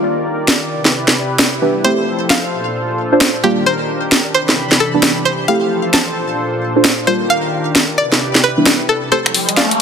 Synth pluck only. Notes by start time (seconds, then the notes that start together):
1.84 C5
2.30 F5
3.44 G4
3.66 C5
4.34 C5
4.80 A4
5.25 C5
5.48 F5
5.93 A5
7.07 C5
7.30 F5
7.98 D5
8.44 B4
8.89 A4
9.12 A4 C5
9.57 D5 F5